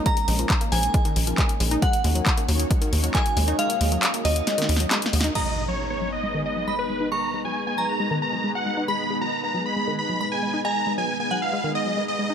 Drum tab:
CC |------------------------------------------------|------------------------------------------------|------------------------------------------------|x-----------------------------------------------|
HH |x--x--o--x--x--x--o--x--x--x--o--x--x--x--o--x--|x--x--o--x--x--x--o--x--x--x--o--x--x--x--o--x--|x--x--o--x--x--x--o--x--x--x--o--x--x--x--o--x--|------------------------------------------------|
CP |------------x-----------------------x-----------|------------x-----------------------x-----------|------------x-----------------------x-----------|------------------------------------------------|
SD |------------------------------------------------|------------------------------------------------|------------------------o---o---o---o---o---o---|------------------------------------------------|
BD |o-----------o-----------o-----------o-----------|o-----------o-----------o-----------o-----------|------------------------------------------------|------------------------------------------------|

CC |------------------------------------------------|------------------------------------------------|------------------------------------------------|
HH |------------------------------------------------|------------------------------------------------|------------------------------------------------|
CP |------------------------------------------------|------------------------------------------------|------------------------------------------------|
SD |------------------------------------------------|------------------------------------------------|------------------------------------------------|
BD |------------------------------------------------|------------------------------------------------|------------------------------------------------|